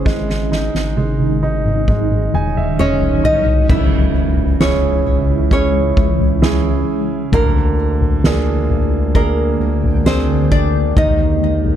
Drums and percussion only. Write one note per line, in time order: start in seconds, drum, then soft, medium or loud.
0.06 kick medium
0.06 snare soft
0.30 snare soft
0.52 snare medium
0.75 snare soft
0.97 high tom medium
1.19 high tom medium
1.43 high tom medium
1.66 mid tom medium
1.88 kick medium
1.88 mid tom medium
2.12 mid tom medium
2.34 mid tom medium
2.57 mid tom medium
2.79 mid tom medium
3.01 floor tom medium
3.24 floor tom medium
3.46 floor tom medium
3.69 kick loud
3.69 floor tom loud
3.69 crash medium
4.37 floor tom medium
4.60 snare loud
5.06 floor tom medium
5.51 kick medium
5.97 kick medium
6.19 floor tom medium
6.42 snare medium
7.32 kick loud
7.32 floor tom loud
8.01 floor tom medium
8.24 snare loud
8.70 floor tom medium
9.15 kick medium
9.84 floor tom medium
10.06 snare medium
10.52 kick medium
10.97 kick loud
10.97 floor tom loud
11.65 floor tom medium